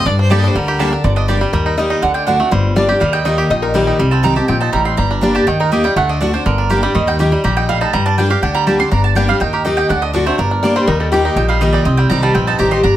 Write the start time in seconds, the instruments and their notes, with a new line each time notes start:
Already playing: five-string banjo G3
0.05 upright bass G2, steel-string acoustic guitar G2, five-string banjo D4, fiddle D5
0.19 five-string banjo D4, fiddle C5
0.30 steel-string acoustic guitar G3 A#3 D4 A4, mandolin A#3 G4 D5 A5, five-string banjo G4, fiddle D5
0.39 fiddle D#5
0.44 five-string banjo D4, fiddle C5
0.55 upright bass D2, steel-string acoustic guitar D3, five-string banjo G3, fiddle A#4
0.68 five-string banjo G4
0.79 steel-string acoustic guitar G3 A#3 D4 A4, mandolin A#3 G4 D5 A5, five-string banjo D4
0.92 five-string banjo D4, steel-string acoustic guitar D4 A4
1.04 upright bass G1, steel-string acoustic guitar G2, five-string banjo D3, mandolin D5
1.16 five-string banjo D4, mandolin D#5
1.28 steel-string acoustic guitar G3 A#3 D4 G4, five-string banjo G4, mandolin D5
1.41 five-string banjo G3, steel-string acoustic guitar D4 G4
1.53 upright bass D#2, steel-string acoustic guitar D#3, five-string banjo G3, resonator guitar played with a steel bar A#4
1.66 five-string banjo D#4
1.77 steel-string acoustic guitar D#3 A#3 D#4 G4, five-string banjo G3, resonator guitar played with a steel bar D#5
1.90 five-string banjo D#4
2.02 upright bass D2, five-string banjo D3, steel-string acoustic guitar D3, mandolin F#5
2.14 five-string banjo D4, mandolin G5
2.26 steel-string acoustic guitar D3 A3 D4 F#4, five-string banjo D4, mandolin F#5
2.39 five-string banjo A3, steel-string acoustic guitar D4 F#4
2.51 upright bass G1, steel-string acoustic guitar G2, five-string banjo G3, resonator guitar played with a steel bar C5
2.76 steel-string acoustic guitar G3 A#3 D4 G4, five-string banjo D4, resonator guitar played with a steel bar D5
2.89 steel-string acoustic guitar D4 G4, five-string banjo G4
3.00 upright bass D#2, steel-string acoustic guitar D#3, five-string banjo G3, mandolin F5
3.13 five-string banjo D#4, mandolin G5
3.25 steel-string acoustic guitar D#3 A#3 D#4 G4, five-string banjo D#4, mandolin D#5
3.38 five-string banjo G4
3.50 upright bass A#1, steel-string acoustic guitar A#2, five-string banjo D#4, resonator guitar played with a steel bar D#5
3.62 five-string banjo D#4, resonator guitar played with a steel bar A#4
3.74 steel-string acoustic guitar D#3 A#3 D#4 G4, five-string banjo G3, resonator guitar played with a steel bar G4
3.87 five-string banjo D#4
3.99 upright bass C2, steel-string acoustic guitar C3, five-string banjo G3
4.11 five-string banjo C4, mandolin A5
4.23 steel-string acoustic guitar D#3 G3 C4 G4, five-string banjo D#4, mandolin A#5
4.35 steel-string acoustic guitar C4 G4, five-string banjo G4, mandolin A5
4.48 upright bass A#1, steel-string acoustic guitar A#2, five-string banjo C4, mandolin G5
4.60 five-string banjo D#4, mandolin A5
4.73 upright bass A1, steel-string acoustic guitar A2, five-string banjo G3, mandolin A#5
4.85 five-string banjo C4, mandolin C6
4.97 upright bass G1, steel-string acoustic guitar G2, five-string banjo G3, mandolin A#5
5.11 five-string banjo D4
5.21 steel-string acoustic guitar G3 A#3 D4 G4, five-string banjo D4
5.35 five-string banjo G4, mandolin A5
5.47 upright bass D#2, steel-string acoustic guitar D#3, five-string banjo D#3, mandolin G5
5.60 five-string banjo D#4, mandolin A#4
5.72 steel-string acoustic guitar D#3 A#3 D#4 G4, five-string banjo G4, mandolin D#5
5.84 five-string banjo G3, steel-string acoustic guitar D#4 G4, mandolin G5
5.96 upright bass D2, steel-string acoustic guitar D3, five-string banjo A3, mandolin F#5
6.09 five-string banjo D4, mandolin D#5
6.21 steel-string acoustic guitar D3 A3 D4 F#4, five-string banjo D4, mandolin D5
6.33 five-string banjo D4, steel-string acoustic guitar D4 F#4, mandolin C5
6.46 upright bass G1, steel-string acoustic guitar G2, five-string banjo D3, mandolin A#4
6.58 five-string banjo D4
6.70 steel-string acoustic guitar G3 A#3 D4 G4, five-string banjo G4
6.83 five-string banjo G3, steel-string acoustic guitar D4 G4, mandolin D5
6.95 upright bass D#2, five-string banjo D#3, steel-string acoustic guitar D#3, mandolin D#5
7.07 five-string banjo D#4, mandolin G5
7.19 steel-string acoustic guitar D#3 A#3 D#4 G4, five-string banjo G4
7.31 five-string banjo G3, steel-string acoustic guitar D#4 G4
7.44 upright bass A#1, steel-string acoustic guitar A#2, five-string banjo G4, mandolin A#5
7.57 five-string banjo D#4, mandolin G5
7.69 steel-string acoustic guitar A2, five-string banjo G3, mandolin F5
7.81 five-string banjo D#4, mandolin A5
7.93 upright bass G2, steel-string acoustic guitar G2, five-string banjo G3, mandolin A#5
8.06 five-string banjo D4, mandolin A5
8.18 steel-string acoustic guitar G3 A#3 D4 G4, five-string banjo D4, mandolin G5
8.30 steel-string acoustic guitar D4 G4, five-string banjo G4, mandolin F5
8.42 upright bass D2, steel-string acoustic guitar D3, five-string banjo D4, mandolin G5
8.54 five-string banjo G3, mandolin A#5
8.67 steel-string acoustic guitar G3 A#3 D4 G4, five-string banjo G4, mandolin A5
8.79 five-string banjo D4, steel-string acoustic guitar D4 G4, mandolin C6
8.91 upright bass G1, steel-string acoustic guitar G2, five-string banjo D4, mandolin A#5
9.04 mandolin A5
9.15 steel-string acoustic guitar G3 A#3 D4 G4, five-string banjo D4, mandolin G5
9.28 five-string banjo G3, steel-string acoustic guitar D4 G4, mandolin F5
9.40 upright bass D#2, steel-string acoustic guitar D#3, five-string banjo D#4, mandolin G5
9.53 five-string banjo G4, mandolin A#4
9.65 steel-string acoustic guitar D#3 A#3 D#4 G4, five-string banjo D#4, mandolin D#5
9.77 five-string banjo D#4, mandolin G5
9.89 upright bass D2, steel-string acoustic guitar D3, five-string banjo D4, mandolin F#5
10.02 five-string banjo D4, mandolin D#5
10.13 steel-string acoustic guitar D3 A3 D4 F#4, five-string banjo D4, mandolin D5
10.26 five-string banjo A3, steel-string acoustic guitar D4 F#4, mandolin C5
10.38 upright bass G1, steel-string acoustic guitar G2, five-string banjo D4, mandolin A#4
10.51 five-string banjo D4
10.63 steel-string acoustic guitar G3 A#3 D4 G4, five-string banjo D4, resonator guitar played with a steel bar D5
10.76 five-string banjo G3, resonator guitar played with a steel bar C5
10.87 upright bass D#2, steel-string acoustic guitar D#3, five-string banjo D#4, resonator guitar played with a steel bar A#4
11.00 five-string banjo G3, resonator guitar played with a steel bar A4
11.12 steel-string acoustic guitar D#3 A#3 D#4 G4, resonator guitar played with a steel bar G4, five-string banjo G4
11.25 five-string banjo D#4
11.36 upright bass A#1, steel-string acoustic guitar A#2, five-string banjo D#4, mandolin G5
11.49 five-string banjo G3, mandolin F5
11.61 steel-string acoustic guitar D#3 A#3 D#4 G4, five-string banjo D#4, mandolin D#5
11.73 five-string banjo D#4, mandolin D5
11.85 upright bass C2, steel-string acoustic guitar C3, five-string banjo C4, mandolin D#5
11.97 five-string banjo G3, mandolin G5
12.10 upright bass C2, steel-string acoustic guitar D#3 G3 C4 G4, five-string banjo D#4, mandolin A#5
12.23 five-string banjo G3, mandolin A5
12.34 upright bass A#1, steel-string acoustic guitar G2, five-string banjo C4, mandolin G5
12.47 five-string banjo D#4, mandolin A5
12.58 upright bass A1, steel-string acoustic guitar D#3 G3 C4 G4, five-string banjo G4, mandolin A#5
12.71 five-string banjo D#4, mandolin C6
12.83 upright bass G1, steel-string acoustic guitar G2, five-string banjo D4, mandolin A#5